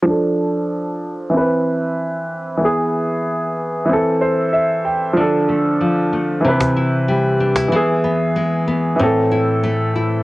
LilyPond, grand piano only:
\new Staff \with { instrumentName = "Grand piano" } { \time 4/4 \key d \dorian \tempo 4 = 94 << { r1 | r2 r8 c''8 e''8 g''8 | r1 | r1 | } \\ { <f d' a'>2 <e c' b'>2 | <e b gis'>2 <e c' a'>2 | <f d' a'>2 <e c' b'>2 | <e b gis'>2 <e c' a'>2 | } >> }